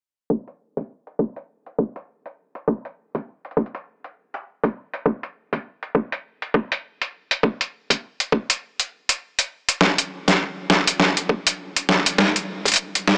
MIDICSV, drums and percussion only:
0, 0, Header, 1, 2, 480
1, 0, Start_track
1, 0, Tempo, 594059
1, 245, Time_signature, 4, 2, 24, 8
1, 10647, End_track
2, 0, Start_track
2, 0, Title_t, "Drums"
2, 243, Note_on_c, 9, 36, 106
2, 324, Note_off_c, 9, 36, 0
2, 385, Note_on_c, 9, 42, 49
2, 465, Note_off_c, 9, 42, 0
2, 623, Note_on_c, 9, 36, 54
2, 625, Note_on_c, 9, 42, 60
2, 704, Note_off_c, 9, 36, 0
2, 706, Note_off_c, 9, 42, 0
2, 864, Note_on_c, 9, 42, 33
2, 945, Note_off_c, 9, 42, 0
2, 962, Note_on_c, 9, 36, 97
2, 1043, Note_off_c, 9, 36, 0
2, 1102, Note_on_c, 9, 42, 61
2, 1183, Note_off_c, 9, 42, 0
2, 1344, Note_on_c, 9, 42, 34
2, 1425, Note_off_c, 9, 42, 0
2, 1443, Note_on_c, 9, 36, 91
2, 1523, Note_off_c, 9, 36, 0
2, 1583, Note_on_c, 9, 42, 64
2, 1664, Note_off_c, 9, 42, 0
2, 1823, Note_on_c, 9, 42, 48
2, 1904, Note_off_c, 9, 42, 0
2, 2062, Note_on_c, 9, 42, 62
2, 2142, Note_off_c, 9, 42, 0
2, 2163, Note_on_c, 9, 36, 109
2, 2243, Note_off_c, 9, 36, 0
2, 2304, Note_on_c, 9, 42, 49
2, 2384, Note_off_c, 9, 42, 0
2, 2543, Note_on_c, 9, 42, 59
2, 2544, Note_on_c, 9, 36, 58
2, 2624, Note_off_c, 9, 36, 0
2, 2624, Note_off_c, 9, 42, 0
2, 2786, Note_on_c, 9, 42, 32
2, 2836, Note_off_c, 9, 42, 0
2, 2836, Note_on_c, 9, 42, 26
2, 2884, Note_on_c, 9, 36, 98
2, 2887, Note_off_c, 9, 42, 0
2, 2887, Note_on_c, 9, 42, 23
2, 2958, Note_off_c, 9, 42, 0
2, 2958, Note_on_c, 9, 42, 18
2, 2964, Note_off_c, 9, 36, 0
2, 3027, Note_off_c, 9, 42, 0
2, 3027, Note_on_c, 9, 42, 64
2, 3108, Note_off_c, 9, 42, 0
2, 3267, Note_on_c, 9, 42, 34
2, 3348, Note_off_c, 9, 42, 0
2, 3507, Note_on_c, 9, 42, 65
2, 3588, Note_off_c, 9, 42, 0
2, 3745, Note_on_c, 9, 36, 101
2, 3748, Note_on_c, 9, 42, 49
2, 3826, Note_off_c, 9, 36, 0
2, 3829, Note_off_c, 9, 42, 0
2, 3988, Note_on_c, 9, 42, 61
2, 4069, Note_off_c, 9, 42, 0
2, 4086, Note_on_c, 9, 36, 113
2, 4166, Note_off_c, 9, 36, 0
2, 4228, Note_on_c, 9, 42, 49
2, 4309, Note_off_c, 9, 42, 0
2, 4466, Note_on_c, 9, 36, 59
2, 4468, Note_on_c, 9, 42, 61
2, 4547, Note_off_c, 9, 36, 0
2, 4549, Note_off_c, 9, 42, 0
2, 4708, Note_on_c, 9, 42, 34
2, 4789, Note_off_c, 9, 42, 0
2, 4806, Note_on_c, 9, 36, 101
2, 4886, Note_off_c, 9, 36, 0
2, 4948, Note_on_c, 9, 42, 61
2, 5029, Note_off_c, 9, 42, 0
2, 5188, Note_on_c, 9, 42, 33
2, 5269, Note_off_c, 9, 42, 0
2, 5286, Note_on_c, 9, 36, 101
2, 5367, Note_off_c, 9, 36, 0
2, 5428, Note_on_c, 9, 42, 64
2, 5509, Note_off_c, 9, 42, 0
2, 5668, Note_on_c, 9, 42, 50
2, 5749, Note_off_c, 9, 42, 0
2, 5907, Note_on_c, 9, 42, 62
2, 5988, Note_off_c, 9, 42, 0
2, 6005, Note_on_c, 9, 36, 116
2, 6086, Note_off_c, 9, 36, 0
2, 6148, Note_on_c, 9, 42, 47
2, 6229, Note_off_c, 9, 42, 0
2, 6386, Note_on_c, 9, 36, 59
2, 6388, Note_on_c, 9, 42, 59
2, 6466, Note_off_c, 9, 36, 0
2, 6469, Note_off_c, 9, 42, 0
2, 6626, Note_on_c, 9, 42, 32
2, 6707, Note_off_c, 9, 42, 0
2, 6725, Note_on_c, 9, 36, 102
2, 6806, Note_off_c, 9, 36, 0
2, 6867, Note_on_c, 9, 42, 61
2, 6947, Note_off_c, 9, 42, 0
2, 7107, Note_on_c, 9, 42, 33
2, 7187, Note_off_c, 9, 42, 0
2, 7346, Note_on_c, 9, 42, 63
2, 7427, Note_off_c, 9, 42, 0
2, 7585, Note_on_c, 9, 42, 47
2, 7666, Note_off_c, 9, 42, 0
2, 7826, Note_on_c, 9, 42, 59
2, 7907, Note_off_c, 9, 42, 0
2, 7925, Note_on_c, 9, 36, 112
2, 7925, Note_on_c, 9, 38, 47
2, 8006, Note_off_c, 9, 36, 0
2, 8006, Note_off_c, 9, 38, 0
2, 8067, Note_on_c, 9, 42, 51
2, 8148, Note_off_c, 9, 42, 0
2, 8305, Note_on_c, 9, 36, 59
2, 8307, Note_on_c, 9, 38, 41
2, 8307, Note_on_c, 9, 42, 61
2, 8386, Note_off_c, 9, 36, 0
2, 8388, Note_off_c, 9, 38, 0
2, 8388, Note_off_c, 9, 42, 0
2, 8644, Note_on_c, 9, 36, 101
2, 8645, Note_on_c, 9, 38, 51
2, 8725, Note_off_c, 9, 36, 0
2, 8726, Note_off_c, 9, 38, 0
2, 8787, Note_on_c, 9, 42, 66
2, 8867, Note_off_c, 9, 42, 0
2, 8885, Note_on_c, 9, 38, 51
2, 8966, Note_off_c, 9, 38, 0
2, 9025, Note_on_c, 9, 42, 36
2, 9106, Note_off_c, 9, 42, 0
2, 9125, Note_on_c, 9, 36, 103
2, 9206, Note_off_c, 9, 36, 0
2, 9265, Note_on_c, 9, 42, 65
2, 9346, Note_off_c, 9, 42, 0
2, 9506, Note_on_c, 9, 42, 50
2, 9586, Note_off_c, 9, 42, 0
2, 9606, Note_on_c, 9, 38, 55
2, 9687, Note_off_c, 9, 38, 0
2, 9746, Note_on_c, 9, 42, 63
2, 9827, Note_off_c, 9, 42, 0
2, 9845, Note_on_c, 9, 36, 122
2, 9847, Note_on_c, 9, 38, 58
2, 9925, Note_off_c, 9, 36, 0
2, 9928, Note_off_c, 9, 38, 0
2, 9986, Note_on_c, 9, 42, 54
2, 10067, Note_off_c, 9, 42, 0
2, 10225, Note_on_c, 9, 36, 62
2, 10228, Note_on_c, 9, 42, 30
2, 10245, Note_off_c, 9, 42, 0
2, 10245, Note_on_c, 9, 42, 36
2, 10248, Note_off_c, 9, 42, 0
2, 10248, Note_on_c, 9, 42, 40
2, 10276, Note_off_c, 9, 42, 0
2, 10276, Note_on_c, 9, 42, 44
2, 10291, Note_off_c, 9, 42, 0
2, 10291, Note_on_c, 9, 42, 51
2, 10306, Note_off_c, 9, 36, 0
2, 10309, Note_off_c, 9, 42, 0
2, 10309, Note_on_c, 9, 42, 56
2, 10390, Note_off_c, 9, 42, 0
2, 10466, Note_on_c, 9, 42, 36
2, 10547, Note_off_c, 9, 42, 0
2, 10565, Note_on_c, 9, 36, 105
2, 10565, Note_on_c, 9, 38, 65
2, 10646, Note_off_c, 9, 36, 0
2, 10646, Note_off_c, 9, 38, 0
2, 10647, End_track
0, 0, End_of_file